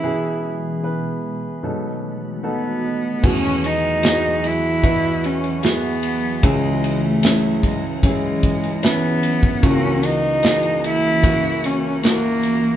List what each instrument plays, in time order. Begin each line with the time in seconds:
Already playing: ambient pad E3 G#4, cello E4
0.03 ambient pad B2 G#3 B3, grand piano B2 B3 E4 G#4
0.83 grand piano B3 E4 B4
1.63 grand piano B2 F#3 B3 D#4 A4, ambient pad D#3 A3 B3 F#4
2.43 grand piano B3 D#4 A4 F#5, cello B3
2.63 grand piano D#5
2.83 grand piano D#5
3.23 grand piano E2 B2 E3 F#4 G#4, nylon-string guitar E3 G#3 B3 F#4, ambient pad E3 F#3 B3 F#4, cello C#4, kick, crash
3.64 cello D#4, ride
4.02 grand piano E3 F#4 G#4, nylon-string guitar G#3 B3 F#4, snare, ride
4.44 cello E4, ride
4.81 nylon-string guitar G#3 B3, grand piano E4 F#4 B4, kick, ride
4.86 nylon-string guitar E4 F#4
5.24 cello C#4, ride
5.44 ride
5.62 cello B3, grand piano E4 F#4 G#4, snare, ride
6.03 ride
6.43 grand piano C#2 C#4 E4 G#4, nylon-string guitar C#3 E3 C#4 E4 G#4, cello G#3, ambient pad C#4 G#4, kick, ride
6.84 ride
7.05 cello A3
7.22 nylon-string guitar E3 C#4 E4 G#4, grand piano C#4 E4 G#4, snare, ride
7.63 cello G#3, kick, ride
8.01 nylon-string guitar E3 C#4, grand piano C#4 E4 G#4, kick, ride
8.06 cello G#3, nylon-string guitar E4 G#4
8.43 kick, ride
8.64 ride
8.82 cello B3, grand piano C#4 E4 B4, snare, ride
9.23 ride
9.43 kick
9.62 grand piano C#2 C#3 E3 A#3 F#4, ambient pad C#2 A#3 F#4, nylon-string guitar C#3 E3 A#3 F#4, cello C#4, kick, ride
10.03 cello D#4, ride
10.42 nylon-string guitar E3 A#3 F#4, grand piano E3 A#3 G#4, snare, ride
10.63 ride
10.84 cello E4, ride
11.21 nylon-string guitar E3 A#3, grand piano A#3 E4 F#4, kick, ride
11.26 nylon-string guitar E4 F#4
11.64 cello C#4, ride
12.03 grand piano A#3 E4 F#4, cello A#3, snare, ride
12.43 ride